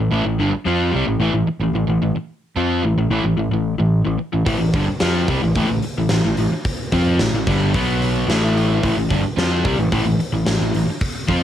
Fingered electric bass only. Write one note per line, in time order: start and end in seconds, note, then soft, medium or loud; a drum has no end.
0.00 0.11 A1 medium
0.12 0.24 A1 loud
0.25 0.38 A1 medium
0.40 0.52 G1 medium
0.54 muted fingered electric bass stroke soft
0.66 0.91 F2 medium
0.94 1.06 C2 medium
1.08 1.19 A1 medium
1.20 1.33 A1 medium
1.33 1.46 A1 medium
1.47 muted fingered electric bass stroke soft
1.60 1.73 A1 medium
1.73 1.87 A1 medium
1.88 2.01 A1 medium
2.02 2.14 A1 medium
2.16 muted fingered electric bass stroke soft
2.56 2.82 F2 medium
2.84 2.97 A1 medium
2.97 3.10 A1 medium
3.11 3.23 A1 medium
3.24 3.37 A1 medium
3.37 3.50 A1 medium
3.51 3.77 A1 medium
3.79 4.04 A1 medium
4.06 4.19 A1 medium
4.20 muted fingered electric bass stroke soft
4.34 4.46 A1 medium
4.46 4.59 A1 medium
4.61 4.73 A1 medium
4.74 4.87 G1 medium
4.88 muted fingered electric bass stroke soft
5.02 5.27 F2 loud
5.28 5.41 C2 medium
5.44 5.55 A1 medium
5.56 5.69 A1 medium
5.69 5.82 A1 medium
5.84 muted fingered electric bass stroke soft
5.98 6.10 A1 medium
6.11 6.24 A1 medium
6.25 6.37 A1 medium
6.38 6.51 A1 medium
6.51 muted fingered electric bass stroke soft
6.93 7.18 F2 medium
7.19 7.32 A1 medium
7.33 7.46 A1 medium
7.48 7.73 G1 medium
7.75 8.25 B1 loud
8.28 8.79 A1 loud
8.84 8.96 A1 loud
8.97 9.09 A1 medium
9.11 9.23 G1 medium
9.24 muted fingered electric bass stroke soft
9.37 9.63 F2 loud
9.66 9.78 C2 medium
9.79 9.91 A1 medium
9.92 10.05 A1 medium
10.05 10.18 A1 medium
10.19 muted fingered electric bass stroke soft
10.32 10.45 A1 medium
10.47 10.60 A1 medium
10.61 10.74 A1 medium
10.75 10.87 A1 medium
10.89 muted fingered electric bass stroke soft
11.29 11.43 F2 medium